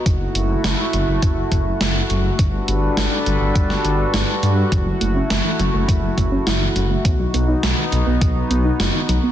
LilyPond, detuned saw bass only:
\new Staff \with { instrumentName = "Detuned saw bass" } { \clef bass \time 4/4 \key fis \dorian \tempo 4 = 103 fis,,16 r16 fis,,16 r16 fis,,16 r16 fis,,16 fis,,16 fis,,16 r16 fis,,16 r16 fis,,16 r16 fis,,16 r16 | g,,16 r16 g,,16 r16 g,,16 r16 g,,16 g,,16 g,,16 r16 g,,16 r16 g,,16 r16 g,16 r16 | fis,,16 r16 fis,,16 r16 fis,,16 r16 fis,,16 fis,,16 fis,,16 r16 fis,,16 r16 fis,,16 r16 fis,,16 r16 | b,,16 r16 b,,16 r16 b,,16 r16 b,,16 b,,16 b,,16 r16 b,,16 r16 fis,,16 r16 b,,16 r16 | }